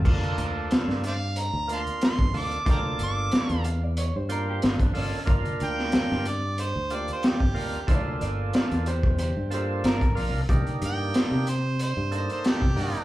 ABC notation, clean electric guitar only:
X:1
M:4/4
L:1/16
Q:"Swing 16ths" 1/4=92
K:Gm
V:1 name="Clean electric guitar"
z16 | z6 f d ^c =c B G F D ^C2 | F2 z12 z2 | [Fd]2 [Fd]2 [Fd]2 [Gc]2 [Gc]2 [Gc]2 B2 z2 |
z16 |]